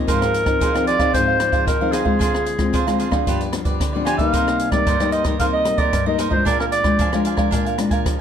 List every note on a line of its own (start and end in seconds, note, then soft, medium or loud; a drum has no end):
0.00 0.43 F3 medium
0.00 0.43 C4 medium
0.00 0.43 D#4 medium
0.07 0.59 G#2 medium
0.07 0.20 D#4 medium
0.07 0.20 G#4 medium
0.07 0.84 A#4 loud
0.07 0.21 C5 medium
0.07 0.20 F5 medium
0.07 kick medium
0.07 closed hi-hat medium
0.21 0.33 G#4 soft
0.21 0.33 C5 medium
0.21 0.33 F5 soft
0.21 cross-stick medium
0.21 closed hi-hat soft
0.34 muted cavaquinho stroke soft
0.34 closed hi-hat soft
0.46 0.69 F3 medium
0.46 0.69 C4 medium
0.46 0.70 D#4 medium
0.46 kick medium
0.46 cross-stick medium
0.46 closed hi-hat soft
0.60 1.11 D#3 medium
0.60 0.73 D#4 medium
0.60 0.74 G#4 medium
0.60 0.74 C5 medium
0.60 0.73 F5 medium
0.60 kick medium
0.60 closed hi-hat medium
0.74 0.97 F3 medium
0.74 0.97 C4 medium
0.74 0.97 D#4 medium
0.74 0.87 G#4 soft
0.74 0.87 F5 soft
0.74 cross-stick medium
0.74 closed hi-hat soft
0.87 1.00 D#4 soft
0.87 1.00 G#4 soft
0.87 0.99 C5 soft
0.87 1.12 D5 loud
0.87 0.98 F5 medium
0.87 closed hi-hat medium
0.99 1.09 F3 medium
0.99 1.09 C4 medium
0.99 1.10 D#4 medium
0.99 1.13 G#4 medium
0.99 1.13 C5 medium
0.99 1.12 F5 medium
0.99 kick medium
0.99 cross-stick medium
0.99 closed hi-hat soft
1.13 1.65 G#2 medium
1.13 1.36 F3 medium
1.13 1.37 C4 medium
1.13 1.26 D#4 medium
1.13 1.37 D#4 medium
1.13 1.27 G#4 medium
1.13 1.64 C5 loud
1.13 1.27 C5 medium
1.13 1.26 F5 medium
1.13 kick medium
1.13 closed hi-hat medium
1.27 1.39 G#4 soft
1.27 1.39 C5 soft
1.27 1.40 F5 medium
1.40 1.76 F3 medium
1.40 1.76 C4 medium
1.40 1.76 D#4 medium
1.40 muted cavaquinho stroke soft
1.40 cross-stick medium
1.40 closed hi-hat soft
1.52 1.80 G#4 medium
1.52 1.79 C5 medium
1.52 1.79 F5 medium
1.52 kick medium
1.52 closed hi-hat soft
1.67 2.18 D#3 medium
1.67 1.93 A#4 medium
1.67 kick medium
1.67 cross-stick medium
1.67 closed hi-hat medium
1.81 2.03 F3 medium
1.81 2.04 C4 medium
1.81 2.04 D#4 medium
1.81 1.92 G#4 soft
1.81 1.92 C5 soft
1.81 1.93 F5 medium
1.92 2.05 D#4 medium
1.92 3.26 G#4 medium
1.92 2.05 G#4 medium
1.92 2.04 C5 medium
1.92 2.03 F5 medium
1.92 cross-stick medium
1.92 closed hi-hat medium
2.05 2.55 G#3 medium
2.05 2.55 C4 medium
2.05 2.55 F4 medium
2.05 2.19 G#4 soft
2.05 2.19 C5 medium
2.05 2.18 F5 medium
2.05 kick medium
2.19 2.71 D3 medium
2.19 2.32 D4 medium
2.19 2.33 G#4 medium
2.19 2.33 C5 medium
2.19 2.33 F5 medium
2.19 kick medium
2.19 closed hi-hat medium
2.34 2.45 G#4 soft
2.34 2.45 C5 soft
2.34 2.45 F5 medium
2.34 cross-stick medium
2.45 muted cavaquinho stroke soft
2.45 closed hi-hat soft
2.58 2.82 G#3 medium
2.58 2.82 C4 medium
2.58 2.82 F4 medium
2.58 kick medium
2.58 cross-stick medium
2.58 closed hi-hat soft
2.73 3.24 D3 medium
2.73 2.86 D4 medium
2.73 2.86 G#4 medium
2.73 2.86 C5 medium
2.73 2.85 F5 medium
2.73 kick medium
2.73 closed hi-hat medium
2.87 3.09 G#3 medium
2.87 3.10 C4 medium
2.87 3.10 F4 medium
2.87 2.98 G#4 soft
2.87 2.99 C5 medium
2.87 2.99 F5 soft
2.87 cross-stick medium
2.87 closed hi-hat soft
2.98 3.12 D4 soft
2.98 3.12 G#4 soft
2.98 3.11 C5 soft
2.98 3.10 F5 medium
2.98 closed hi-hat soft
3.11 3.48 F3 medium
3.11 3.48 B3 medium
3.11 3.49 D4 medium
3.11 3.26 G#4 soft
3.11 3.25 C5 medium
3.11 3.25 F5 medium
3.11 kick medium
3.11 cross-stick medium
3.26 3.77 G2 medium
3.26 3.39 F4 medium
3.26 3.40 G4 medium
3.26 3.40 B4 medium
3.26 3.40 D5 medium
3.26 kick medium
3.26 closed hi-hat medium
3.40 3.53 D5 medium
3.40 closed hi-hat soft
3.53 3.78 F3 medium
3.53 3.78 B3 medium
3.53 3.79 D4 medium
3.53 muted cavaquinho stroke soft
3.53 cross-stick medium
3.53 closed hi-hat medium
3.65 3.93 G4 medium
3.65 3.92 B4 medium
3.65 3.92 D5 medium
3.65 kick medium
3.65 closed hi-hat soft
3.80 4.31 D3 medium
3.80 kick medium
3.80 cross-stick medium
3.80 closed hi-hat medium
3.93 4.17 F3 medium
3.93 4.17 B3 medium
3.93 4.17 D4 medium
3.93 4.05 G4 soft
3.93 4.05 B4 soft
3.93 4.06 D5 medium
4.05 4.18 F4 medium
4.05 4.18 G4 medium
4.05 4.17 B4 medium
4.05 4.16 D5 medium
4.05 4.17 G#5 loud
4.05 cross-stick medium
4.05 closed hi-hat medium
4.17 4.69 G3 medium
4.17 4.69 A#3 medium
4.17 4.69 D#4 medium
4.17 4.32 G4 soft
4.17 4.32 B4 medium
4.17 4.31 D5 medium
4.17 4.68 F5 loud
4.17 kick medium
4.17 closed hi-hat soft
4.33 4.84 C3 medium
4.33 4.45 D#4 medium
4.33 4.46 A#4 medium
4.33 4.46 C5 medium
4.33 4.46 D#5 medium
4.33 kick medium
4.33 closed hi-hat medium
4.47 4.59 A#4 soft
4.47 4.59 C5 soft
4.47 4.59 D#5 soft
4.47 cross-stick medium
4.47 closed hi-hat soft
4.59 muted cavaquinho stroke soft
4.59 closed hi-hat soft
4.72 4.95 G3 medium
4.72 4.95 A#3 medium
4.72 4.95 D#4 medium
4.72 5.10 D5 medium
4.72 kick medium
4.72 cross-stick medium
4.72 closed hi-hat soft
4.86 5.37 G2 medium
4.86 4.99 D#4 medium
4.86 4.99 A#4 medium
4.86 4.99 C5 medium
4.86 4.98 D#5 medium
4.86 kick medium
4.86 closed hi-hat medium
5.00 5.22 G3 medium
5.00 5.22 A#3 medium
5.00 5.23 D#4 medium
5.00 5.11 A#4 soft
5.00 5.12 C5 soft
5.00 5.12 D#5 medium
5.00 cross-stick medium
5.00 closed hi-hat soft
5.11 5.25 D#4 medium
5.11 5.25 A#4 medium
5.11 5.25 C5 medium
5.11 5.24 D#5 loud
5.11 5.23 D#5 medium
5.11 closed hi-hat soft
5.24 5.35 G3 medium
5.24 5.35 A#3 medium
5.24 5.35 D#4 medium
5.24 5.39 A#4 medium
5.24 5.39 C5 medium
5.24 5.38 D#5 medium
5.24 kick medium
5.24 cross-stick medium
5.24 closed hi-hat soft
5.39 5.90 C3 medium
5.39 5.62 G3 medium
5.39 5.62 A#3 medium
5.39 5.52 D#4 medium
5.39 5.63 D#4 medium
5.39 5.52 A#4 medium
5.39 5.53 C5 medium
5.39 5.52 D#5 medium
5.39 5.46 F5 loud
5.39 kick medium
5.39 closed hi-hat medium
5.53 5.65 A#4 soft
5.53 5.65 C5 soft
5.53 5.65 D#5 medium
5.53 5.80 D#5 loud
5.65 5.91 G3 medium
5.65 5.91 A#3 medium
5.65 5.91 D#4 medium
5.65 muted cavaquinho stroke soft
5.65 cross-stick medium
5.65 closed hi-hat medium
5.78 6.05 A#4 medium
5.78 6.05 C5 medium
5.78 6.06 D5 medium
5.78 6.04 D#5 medium
5.78 kick medium
5.78 closed hi-hat soft
5.93 6.43 G2 medium
5.93 kick medium
5.93 cross-stick medium
5.93 closed hi-hat medium
6.06 6.29 G3 medium
6.06 6.29 A#3 medium
6.06 6.29 D#4 medium
6.06 6.18 A#4 medium
6.06 6.18 C5 soft
6.06 6.18 D#5 medium
6.06 6.19 D#5 medium
6.18 6.31 D#4 medium
6.18 6.31 A#4 medium
6.18 6.30 C5 medium
6.18 6.29 D#5 medium
6.18 cross-stick medium
6.18 closed hi-hat medium
6.30 6.80 G#3 medium
6.30 6.81 D4 medium
6.30 6.81 F4 medium
6.30 6.45 A#4 soft
6.30 6.44 C5 soft
6.30 6.45 C5 medium
6.30 6.44 D#5 medium
6.30 kick medium
6.45 6.96 A#2 medium
6.45 6.58 D4 medium
6.45 6.58 A#4 medium
6.45 6.59 D5 medium
6.45 6.59 F5 medium
6.45 6.58 G#5 medium
6.45 kick medium
6.45 closed hi-hat medium
6.59 6.66 A#4 medium
6.59 6.71 A#4 soft
6.59 6.71 F5 medium
6.59 6.71 G#5 medium
6.59 cross-stick medium
6.71 7.22 D5 loud
6.71 muted cavaquinho stroke soft
6.71 closed hi-hat soft
6.84 7.08 G#3 medium
6.84 7.08 D4 medium
6.84 7.08 F4 medium
6.84 kick medium
6.84 cross-stick medium
6.84 closed hi-hat soft
6.99 7.50 F3 medium
6.99 7.11 D4 medium
6.99 7.12 A#4 medium
6.99 7.12 F5 medium
6.99 7.12 G#5 medium
6.99 kick medium
6.99 closed hi-hat medium
7.13 7.36 G#3 medium
7.13 7.36 D4 medium
7.13 7.36 F4 medium
7.13 7.24 A#4 soft
7.13 7.25 F5 soft
7.13 7.25 G#5 medium
7.13 cross-stick medium
7.13 closed hi-hat soft
7.25 7.38 D4 medium
7.25 7.37 A#4 medium
7.25 7.37 F5 medium
7.25 7.35 G#5 medium
7.25 closed hi-hat medium
7.37 7.48 G#3 medium
7.37 7.48 D4 medium
7.37 7.48 F4 medium
7.37 7.50 A#4 medium
7.37 7.51 F5 medium
7.37 7.50 G#5 medium
7.37 kick medium
7.37 cross-stick medium
7.51 8.03 A#2 medium
7.51 7.75 G#3 medium
7.51 7.64 D4 medium
7.51 7.76 D4 medium
7.51 7.76 F4 medium
7.51 7.64 A#4 medium
7.51 7.65 F5 medium
7.51 7.64 G#5 medium
7.51 kick medium
7.51 closed hi-hat medium
7.65 7.77 A#4 soft
7.65 7.77 F5 medium
7.65 7.78 G#5 soft
7.65 closed hi-hat soft
7.78 8.15 G#3 medium
7.78 8.15 D4 medium
7.78 8.15 F4 medium
7.78 muted cavaquinho stroke soft
7.78 cross-stick medium
7.78 closed hi-hat medium
7.91 8.18 A#4 medium
7.91 8.18 F5 medium
7.91 8.17 G#5 medium
7.91 kick medium
7.91 closed hi-hat soft
8.06 8.21 F3 medium
8.06 kick medium
8.06 cross-stick medium
8.06 closed hi-hat medium